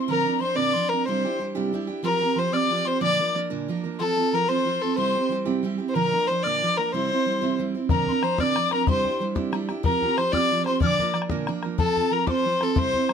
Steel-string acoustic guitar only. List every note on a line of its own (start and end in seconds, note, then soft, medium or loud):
0.08 0.26 A#2 medium
0.08 0.26 D3 medium
0.08 0.26 F3 medium
0.08 0.25 C4 medium
0.08 0.25 D4 medium
0.08 0.24 A#4 medium
0.25 0.38 F3 soft
0.25 0.39 C4 medium
0.25 0.39 D4 medium
0.25 0.41 A#4 medium
0.39 0.55 F3 soft
0.39 0.55 C4 medium
0.39 0.54 D4 medium
0.39 0.54 A#4 medium
0.55 0.75 A#2 medium
0.55 0.75 D3 medium
0.55 0.73 F3 medium
0.55 0.74 C4 medium
0.55 0.74 D4 medium
0.55 0.74 A#4 medium
0.74 0.90 F3 medium
0.74 0.90 C4 medium
0.74 0.90 D4 medium
0.74 0.90 A#4 medium
0.91 1.07 F3 soft
0.91 1.07 C4 soft
0.91 1.06 D4 soft
0.91 1.06 A#4 medium
1.07 1.24 C3 medium
1.07 1.24 G3 medium
1.07 1.25 D4 medium
1.07 1.24 E4 medium
1.07 1.24 G4 medium
1.25 1.38 D4 medium
1.25 1.39 E4 medium
1.25 1.40 G4 medium
1.39 1.55 G3 medium
1.39 1.54 D4 soft
1.39 1.54 E4 medium
1.39 1.54 G4 medium
1.55 1.73 C3 medium
1.55 1.72 G3 medium
1.55 1.73 D4 medium
1.55 1.73 E4 medium
1.55 1.72 G4 medium
1.73 1.88 G3 medium
1.73 1.88 D4 medium
1.73 1.87 E4 medium
1.73 1.86 G4 medium
1.87 2.03 D4 soft
1.87 2.04 E4 medium
1.87 2.03 G4 medium
2.03 2.21 F3 medium
2.03 2.21 C4 medium
2.03 2.21 F4 medium
2.03 2.20 G4 medium
2.21 2.36 C4 soft
2.21 2.36 F4 soft
2.21 2.37 G4 medium
2.36 2.52 F3 medium
2.36 2.52 C4 medium
2.36 2.52 F4 medium
2.36 2.51 G4 medium
2.52 2.68 F3 medium
2.52 2.69 C4 medium
2.52 2.69 F4 medium
2.52 2.70 G4 medium
2.69 2.85 F3 medium
2.69 2.85 C4 medium
2.69 2.85 F4 medium
2.69 2.83 G4 medium
2.85 3.01 C4 soft
2.85 3.01 F4 soft
2.85 3.01 G4 soft
3.00 3.18 A#2 medium
3.00 3.19 D3 medium
3.00 3.19 F3 medium
3.00 3.19 A#3 medium
3.00 3.18 D4 medium
3.00 3.18 A#4 medium
3.19 3.33 F3 soft
3.19 3.34 A#3 medium
3.19 3.35 D4 medium
3.19 3.34 A#4 medium
3.34 3.50 F3 soft
3.34 3.49 A#3 medium
3.34 3.49 D4 medium
3.34 3.49 A#4 medium
3.50 3.69 A#2 medium
3.50 3.68 D3 medium
3.50 3.67 F3 medium
3.50 3.68 A#3 medium
3.50 3.68 D4 medium
3.50 3.68 A#4 medium
3.68 3.84 F3 medium
3.68 3.84 A#3 medium
3.68 3.84 D4 medium
3.68 3.82 A#4 medium
3.84 3.99 F3 soft
3.84 4.00 A#3 soft
3.84 4.00 D4 soft
3.84 3.99 A#4 medium
4.00 4.17 F3 medium
4.00 4.17 C4 medium
4.00 4.17 F4 medium
4.00 4.15 A4 medium
4.17 4.32 C4 soft
4.17 4.33 F4 medium
4.17 4.32 A4 medium
4.33 4.48 F3 medium
4.33 4.48 C4 medium
4.33 4.47 F4 medium
4.33 4.46 A4 soft
4.47 4.64 F3 soft
4.47 4.64 C4 medium
4.47 4.65 F4 medium
4.47 4.65 A4 medium
4.65 4.81 F3 medium
4.65 4.81 C4 medium
4.65 4.81 F4 medium
4.65 4.80 A4 medium
4.82 4.96 C4 soft
4.82 4.98 F4 soft
4.82 4.97 A4 soft
4.96 5.14 C3 medium
4.96 5.14 G3 medium
4.96 5.15 C4 medium
4.96 5.15 E4 medium
4.96 5.14 G4 medium
5.15 5.29 C4 soft
5.15 5.30 E4 soft
5.15 5.30 G4 medium
5.29 5.45 G3 medium
5.29 5.45 C4 medium
5.29 5.44 E4 medium
5.29 5.44 G4 medium
5.45 5.64 C3 medium
5.45 5.61 G3 medium
5.45 5.62 C4 medium
5.45 5.63 E4 medium
5.45 5.63 G4 medium
5.63 5.79 G3 medium
5.63 5.79 C4 medium
5.63 5.77 E4 medium
5.63 5.76 G4 medium
5.78 5.95 C4 soft
5.78 5.94 E4 medium
5.78 5.94 G4 medium
5.95 6.12 A#2 medium
5.95 6.12 D3 medium
5.95 6.13 F3 medium
5.95 6.13 A#3 medium
5.95 6.12 D4 medium
5.95 6.11 A#4 medium
6.13 6.28 F3 soft
6.13 6.29 A#3 soft
6.13 6.28 D4 medium
6.13 6.28 A#4 medium
6.29 6.44 F3 medium
6.29 6.44 A#3 soft
6.29 6.44 D4 medium
6.29 6.44 A#4 medium
6.45 6.62 A#2 medium
6.45 6.62 D3 medium
6.45 6.61 F3 medium
6.45 6.62 A#3 medium
6.45 6.62 D4 medium
6.45 6.62 A#4 medium
6.62 6.77 F3 medium
6.62 6.77 A#3 medium
6.62 6.77 D4 medium
6.62 6.76 A#4 medium
6.77 6.93 F3 soft
6.77 6.93 A#3 soft
6.77 6.93 D4 soft
6.77 6.92 A#4 medium
6.94 7.10 C3 medium
6.94 7.11 G3 medium
6.94 7.11 C4 medium
6.94 7.10 E4 medium
6.94 7.10 C5 medium
7.11 7.26 C4 medium
7.11 7.26 E4 soft
7.11 7.26 C5 medium
7.26 7.41 G3 medium
7.26 7.41 C4 soft
7.26 7.41 E4 medium
7.26 7.40 C5 medium
7.41 7.59 C3 medium
7.41 7.57 G3 medium
7.41 7.58 C4 medium
7.41 7.58 E4 medium
7.41 7.59 C5 medium
7.58 7.74 G3 medium
7.58 7.75 C4 medium
7.58 7.75 E4 medium
7.58 7.73 C5 medium
7.75 7.90 C4 soft
7.75 7.90 E4 medium
7.75 7.90 C5 medium
7.90 8.07 A#2 medium
7.90 8.07 D3 medium
7.90 8.08 F3 medium
7.90 8.08 C4 medium
7.90 8.07 D4 medium
7.90 8.07 A#4 medium
8.08 8.21 F3 soft
8.08 8.22 C4 medium
8.08 8.23 D4 soft
8.08 8.23 A#4 medium
8.22 8.38 F3 medium
8.22 8.39 C4 medium
8.22 8.39 D4 medium
8.22 8.39 A#4 medium
8.40 8.57 A#2 medium
8.40 8.57 D3 medium
8.40 8.55 F3 medium
8.40 8.56 C4 medium
8.40 8.56 D4 medium
8.40 8.57 A#4 medium
8.56 8.72 F3 medium
8.56 8.72 C4 medium
8.56 8.70 A#4 medium
8.72 8.88 F3 soft
8.72 8.88 C4 soft
8.72 8.87 D4 soft
8.72 8.87 A#4 medium
8.88 9.05 C3 medium
8.88 9.05 G3 medium
8.88 9.05 D4 medium
8.88 9.05 E4 medium
8.88 9.03 G4 medium
9.04 9.20 D4 soft
9.04 9.21 E4 soft
9.04 9.20 G4 medium
9.20 9.35 G3 medium
9.20 9.35 D4 medium
9.20 9.35 E4 medium
9.20 9.34 G4 medium
9.35 9.54 C3 medium
9.35 9.51 G3 medium
9.35 9.52 D4 medium
9.35 9.53 E4 medium
9.35 9.53 G4 medium
9.52 9.68 G3 medium
9.52 9.69 D4 medium
9.52 9.68 E4 medium
9.52 9.67 G4 medium
9.69 9.83 D4 soft
9.69 9.84 E4 medium
9.69 9.84 G4 medium
9.83 10.01 F3 medium
9.83 10.02 C4 medium
9.83 10.02 F4 medium
9.83 10.01 G4 medium
10.02 10.17 C4 soft
10.02 10.17 F4 medium
10.02 10.18 G4 medium
10.17 10.33 F3 medium
10.17 10.33 C4 medium
10.17 10.33 F4 medium
10.17 10.32 G4 medium
10.33 10.50 F3 medium
10.33 10.51 C4 medium
10.33 10.51 F4 medium
10.33 10.51 G4 medium
10.51 10.67 F3 medium
10.51 10.67 C4 medium
10.51 10.66 F4 medium
10.51 10.65 G4 medium
10.66 10.82 C4 soft
10.66 10.82 F4 medium
10.66 10.82 G4 soft
10.81 10.99 A#2 medium
10.81 10.99 D3 medium
10.81 11.00 F3 medium
10.81 11.00 A#3 medium
10.81 10.99 D4 medium
10.81 10.98 A#4 medium
11.00 11.13 F3 soft
11.00 11.14 A#3 medium
11.00 11.14 D4 medium
11.00 11.15 A#4 medium
11.14 11.30 F3 medium
11.14 11.30 A#3 medium
11.14 11.29 D4 medium
11.14 11.29 A#4 medium
11.30 11.49 A#2 medium
11.30 11.49 D3 medium
11.30 11.46 F3 medium
11.30 11.46 A#3 medium
11.30 11.47 D4 medium
11.30 11.48 A#4 medium
11.48 11.63 F3 medium
11.48 11.63 A#3 medium
11.48 11.63 D4 medium
11.48 11.62 A#4 medium
11.63 11.77 F3 soft
11.63 11.78 A#3 medium
11.63 11.78 D4 medium
11.63 11.79 A#4 soft
11.78 11.96 F3 medium
11.78 11.96 C4 medium
11.78 11.96 F4 medium
11.78 11.95 A4 medium
11.97 12.11 C4 soft
11.97 12.11 F4 soft
11.97 12.12 A4 medium
12.11 12.27 F3 medium
12.11 12.27 C4 medium
12.11 12.26 F4 medium
12.11 12.25 A4 medium
12.26 12.44 F3 medium
12.26 12.44 C4 medium
12.26 12.45 F4 medium
12.26 12.45 A4 medium
12.45 12.61 F3 medium
12.45 12.61 C4 medium
12.45 12.60 F4 medium
12.45 12.59 A4 medium
12.60 12.75 C4 soft
12.60 12.76 F4 soft
12.60 12.76 A4 soft
12.75 12.94 C3 medium
12.75 12.94 G3 medium
12.75 12.94 C4 medium
12.75 12.94 E4 medium
12.75 12.92 C5 medium
12.93 13.08 C4 medium
12.93 13.09 E4 soft
12.93 13.09 C5 medium
13.09 13.13 G3 soft
13.09 13.13 C4 medium